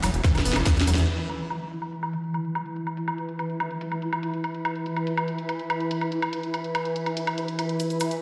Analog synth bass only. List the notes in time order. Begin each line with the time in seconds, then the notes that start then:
0.03 E1
0.14 E1
0.35 E1
0.45 E1
0.56 E1
0.77 E1
0.87 E1
0.98 E1